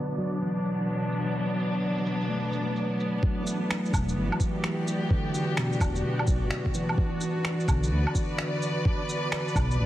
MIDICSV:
0, 0, Header, 1, 6, 480
1, 0, Start_track
1, 0, Key_signature, 1, "minor"
1, 0, Tempo, 468750
1, 1384, Time_signature, 4, 2, 24, 8
1, 10095, End_track
2, 0, Start_track
2, 0, Title_t, "Synth texture"
2, 0, Program_c, 0, 99
2, 0, Note_on_c, 0, 62, 82
2, 0, Note_on_c, 0, 74, 79
2, 3299, Note_off_c, 0, 62, 0
2, 3302, Note_off_c, 0, 74, 0
2, 3311, Note_on_c, 0, 62, 86
2, 3314, Note_on_c, 0, 74, 85
2, 10095, Note_off_c, 0, 62, 0
2, 10095, Note_off_c, 0, 74, 0
2, 10095, End_track
3, 0, Start_track
3, 0, Title_t, "String section"
3, 0, Program_c, 1, 48
3, 0, Note_on_c, 1, 47, 62
3, 0, Note_on_c, 1, 54, 82
3, 0, Note_on_c, 1, 59, 68
3, 0, Note_on_c, 1, 66, 86
3, 362, Note_on_c, 1, 62, 73
3, 489, Note_off_c, 1, 66, 0
3, 3300, Note_off_c, 1, 54, 0
3, 3303, Note_off_c, 1, 47, 0
3, 3303, Note_on_c, 1, 52, 85
3, 4063, Note_off_c, 1, 62, 0
3, 4217, Note_on_c, 1, 66, 87
3, 4502, Note_on_c, 1, 67, 78
3, 7144, Note_off_c, 1, 52, 0
3, 7145, Note_off_c, 1, 67, 0
3, 7721, Note_on_c, 1, 74, 75
3, 8066, Note_on_c, 1, 71, 93
3, 10095, Note_off_c, 1, 59, 0
3, 10095, Note_off_c, 1, 66, 0
3, 10095, Note_off_c, 1, 71, 0
3, 10095, Note_off_c, 1, 74, 0
3, 10095, End_track
4, 0, Start_track
4, 0, Title_t, "Tine electric piano"
4, 0, Program_c, 2, 4
4, 0, Control_c, 2, 64, 127
4, 0, Note_on_c, 2, 50, 58
4, 184, Note_on_c, 2, 54, 73
4, 427, Note_on_c, 2, 52, 54
4, 1469, Note_off_c, 2, 54, 0
4, 1710, Note_off_c, 2, 52, 0
4, 2341, Note_on_c, 2, 57, 63
4, 3309, Note_on_c, 2, 54, 64
4, 3318, Control_c, 2, 64, 0
4, 3326, Note_off_c, 2, 50, 0
4, 3502, Note_off_c, 2, 57, 0
4, 3518, Note_on_c, 2, 57, 55
4, 3521, Control_c, 2, 64, 127
4, 4591, Note_off_c, 2, 54, 0
4, 4717, Note_off_c, 2, 57, 0
4, 5219, Note_on_c, 2, 50, 73
4, 5706, Note_on_c, 2, 47, 74
4, 6506, Note_off_c, 2, 50, 0
4, 6909, Note_on_c, 2, 52, 79
4, 6990, Note_off_c, 2, 47, 0
4, 7157, Control_c, 2, 64, 0
4, 7345, Control_c, 2, 64, 127
4, 7353, Note_off_c, 2, 52, 0
4, 7859, Note_on_c, 2, 50, 73
4, 9146, Note_off_c, 2, 50, 0
4, 10095, End_track
5, 0, Start_track
5, 0, Title_t, "Detuned saw bass"
5, 0, Program_c, 3, 39
5, 4025, Note_on_c, 3, 28, 99
5, 4251, Note_off_c, 3, 28, 0
5, 4264, Note_on_c, 3, 31, 102
5, 4406, Note_off_c, 3, 31, 0
5, 5946, Note_on_c, 3, 28, 101
5, 6172, Note_off_c, 3, 28, 0
5, 6425, Note_on_c, 3, 35, 78
5, 6567, Note_off_c, 3, 35, 0
5, 6573, Note_on_c, 3, 31, 90
5, 6655, Note_off_c, 3, 31, 0
5, 7865, Note_on_c, 3, 35, 97
5, 8091, Note_off_c, 3, 35, 0
5, 8105, Note_on_c, 3, 38, 104
5, 8247, Note_off_c, 3, 38, 0
5, 9782, Note_on_c, 3, 35, 103
5, 10010, Note_off_c, 3, 35, 0
5, 10027, Note_on_c, 3, 33, 97
5, 10095, Note_off_c, 3, 33, 0
5, 10095, End_track
6, 0, Start_track
6, 0, Title_t, "Drums"
6, 102, Note_on_c, 9, 82, 28
6, 184, Note_off_c, 9, 82, 0
6, 184, Note_on_c, 9, 82, 52
6, 287, Note_off_c, 9, 82, 0
6, 343, Note_on_c, 9, 82, 28
6, 445, Note_off_c, 9, 82, 0
6, 669, Note_on_c, 9, 82, 50
6, 772, Note_off_c, 9, 82, 0
6, 903, Note_on_c, 9, 82, 30
6, 1005, Note_off_c, 9, 82, 0
6, 1149, Note_on_c, 9, 82, 54
6, 1251, Note_off_c, 9, 82, 0
6, 1633, Note_on_c, 9, 82, 47
6, 1736, Note_off_c, 9, 82, 0
6, 2025, Note_on_c, 9, 82, 28
6, 2112, Note_off_c, 9, 82, 0
6, 2112, Note_on_c, 9, 82, 53
6, 2215, Note_off_c, 9, 82, 0
6, 2269, Note_on_c, 9, 82, 27
6, 2371, Note_off_c, 9, 82, 0
6, 2588, Note_on_c, 9, 82, 51
6, 2690, Note_off_c, 9, 82, 0
6, 2826, Note_on_c, 9, 82, 29
6, 2929, Note_off_c, 9, 82, 0
6, 3072, Note_on_c, 9, 82, 49
6, 3174, Note_off_c, 9, 82, 0
6, 3305, Note_on_c, 9, 36, 121
6, 3407, Note_off_c, 9, 36, 0
6, 3551, Note_on_c, 9, 82, 59
6, 3654, Note_off_c, 9, 82, 0
6, 3794, Note_on_c, 9, 26, 110
6, 3897, Note_off_c, 9, 26, 0
6, 3949, Note_on_c, 9, 82, 32
6, 4025, Note_on_c, 9, 36, 107
6, 4032, Note_off_c, 9, 82, 0
6, 4032, Note_on_c, 9, 77, 66
6, 4032, Note_on_c, 9, 82, 60
6, 4128, Note_off_c, 9, 36, 0
6, 4135, Note_off_c, 9, 77, 0
6, 4135, Note_off_c, 9, 82, 0
6, 4186, Note_on_c, 9, 82, 33
6, 4288, Note_off_c, 9, 82, 0
6, 4427, Note_on_c, 9, 77, 53
6, 4505, Note_on_c, 9, 36, 99
6, 4508, Note_on_c, 9, 82, 53
6, 4529, Note_off_c, 9, 77, 0
6, 4607, Note_off_c, 9, 36, 0
6, 4610, Note_off_c, 9, 82, 0
6, 4748, Note_on_c, 9, 26, 104
6, 4851, Note_off_c, 9, 26, 0
6, 4994, Note_on_c, 9, 82, 59
6, 5096, Note_off_c, 9, 82, 0
6, 5225, Note_on_c, 9, 36, 121
6, 5327, Note_off_c, 9, 36, 0
6, 5473, Note_on_c, 9, 82, 60
6, 5575, Note_off_c, 9, 82, 0
6, 5706, Note_on_c, 9, 26, 114
6, 5808, Note_off_c, 9, 26, 0
6, 5865, Note_on_c, 9, 82, 31
6, 5945, Note_on_c, 9, 36, 111
6, 5950, Note_off_c, 9, 82, 0
6, 5950, Note_on_c, 9, 77, 63
6, 5950, Note_on_c, 9, 82, 60
6, 6047, Note_off_c, 9, 36, 0
6, 6052, Note_off_c, 9, 77, 0
6, 6052, Note_off_c, 9, 82, 0
6, 6100, Note_on_c, 9, 82, 34
6, 6202, Note_off_c, 9, 82, 0
6, 6342, Note_on_c, 9, 77, 57
6, 6422, Note_on_c, 9, 82, 55
6, 6424, Note_on_c, 9, 36, 108
6, 6445, Note_off_c, 9, 77, 0
6, 6524, Note_off_c, 9, 82, 0
6, 6527, Note_off_c, 9, 36, 0
6, 6661, Note_on_c, 9, 26, 112
6, 6764, Note_off_c, 9, 26, 0
6, 6818, Note_on_c, 9, 36, 68
6, 6906, Note_on_c, 9, 82, 61
6, 6921, Note_off_c, 9, 36, 0
6, 7008, Note_off_c, 9, 82, 0
6, 7058, Note_on_c, 9, 77, 55
6, 7145, Note_on_c, 9, 36, 126
6, 7160, Note_off_c, 9, 77, 0
6, 7247, Note_off_c, 9, 36, 0
6, 7381, Note_on_c, 9, 82, 55
6, 7483, Note_off_c, 9, 82, 0
6, 7625, Note_on_c, 9, 26, 110
6, 7728, Note_off_c, 9, 26, 0
6, 7785, Note_on_c, 9, 82, 31
6, 7864, Note_on_c, 9, 36, 106
6, 7869, Note_off_c, 9, 82, 0
6, 7869, Note_on_c, 9, 77, 62
6, 7869, Note_on_c, 9, 82, 59
6, 7967, Note_off_c, 9, 36, 0
6, 7971, Note_off_c, 9, 77, 0
6, 7971, Note_off_c, 9, 82, 0
6, 8023, Note_on_c, 9, 82, 33
6, 8125, Note_off_c, 9, 82, 0
6, 8262, Note_on_c, 9, 77, 52
6, 8343, Note_on_c, 9, 36, 111
6, 8347, Note_on_c, 9, 82, 56
6, 8364, Note_off_c, 9, 77, 0
6, 8446, Note_off_c, 9, 36, 0
6, 8449, Note_off_c, 9, 82, 0
6, 8586, Note_on_c, 9, 26, 118
6, 8688, Note_off_c, 9, 26, 0
6, 8829, Note_on_c, 9, 82, 56
6, 8932, Note_off_c, 9, 82, 0
6, 9064, Note_on_c, 9, 36, 123
6, 9167, Note_off_c, 9, 36, 0
6, 9311, Note_on_c, 9, 82, 54
6, 9414, Note_off_c, 9, 82, 0
6, 9544, Note_on_c, 9, 26, 115
6, 9647, Note_off_c, 9, 26, 0
6, 9709, Note_on_c, 9, 82, 31
6, 9784, Note_on_c, 9, 36, 111
6, 9790, Note_off_c, 9, 82, 0
6, 9790, Note_on_c, 9, 77, 59
6, 9790, Note_on_c, 9, 82, 57
6, 9886, Note_off_c, 9, 36, 0
6, 9892, Note_off_c, 9, 77, 0
6, 9892, Note_off_c, 9, 82, 0
6, 9944, Note_on_c, 9, 82, 31
6, 10047, Note_off_c, 9, 82, 0
6, 10095, End_track
0, 0, End_of_file